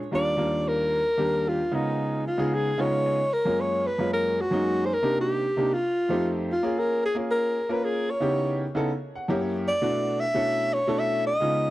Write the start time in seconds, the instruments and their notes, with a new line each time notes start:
0.11 grand piano D#2 G3 A#3 D4 F4, alto saxophone D5
0.37 grand piano D#2 G3 A#3 D4 F4
0.68 alto saxophone A#4
1.17 grand piano D#2 G3 A#3 D4 G4
1.48 alto saxophone F4
1.71 grand piano C#3 G#3 B3 D#4 F4, alto saxophone D#4
2.27 alto saxophone F4
2.38 grand piano C#3 G#3 B3 D#4 G#4
2.55 alto saxophone G#4
2.78 grand piano C#3 G#3 B3 D#4 F4 G#5, alto saxophone C#5
3.06 grand piano D#5
3.33 alto saxophone A#4
3.45 grand piano F#2 G#3 A#3 C#4 F4
3.61 alto saxophone C#5
3.87 alto saxophone B4
3.98 grand piano F#2 G#3 A#3 C#4 F4
4.13 alto saxophone A#4
4.41 alto saxophone F#4
4.51 grand piano F#2 G#3 A#3 C#4 D#4
4.86 alto saxophone C5
4.94 alto saxophone A#4
5.03 grand piano C3 A#3 D4 D#4 G4
5.21 alto saxophone G4
5.57 grand piano C3 A#3 D4 D#4 G4
5.73 alto saxophone F4
6.09 grand piano F2 A3 C4 D#4 G4
6.52 alto saxophone F4
6.63 grand piano A#3 C#4 F4 G#4
6.79 alto saxophone A#4
7.06 alto saxophone G#4
7.15 grand piano A#3 C#4 F4 G#4
7.31 alto saxophone A#4
7.69 grand piano A#3 C#4 F4 A#4, alto saxophone B4
7.85 alto saxophone G#4
8.10 alto saxophone C#5
8.20 grand piano C#3 B3 D#4 E4 G4
8.75 grand piano C#3 B3 D#4 E4 A4
9.15 grand piano F#5
9.28 grand piano F#2 A#3 C#4 E4 G4
9.41 grand piano C#5
9.68 alto saxophone D5
9.81 grand piano B2 A3 B3 D4 E4 F#4
10.20 alto saxophone E5
10.34 grand piano B2 A3 C#4 D4 E4 A4
10.73 alto saxophone C#5
10.87 grand piano B2 A3 C#4 D4 E4 A4
10.99 alto saxophone E5
11.27 alto saxophone D#5
11.40 grand piano C#3 G#3 B3 D#4 F4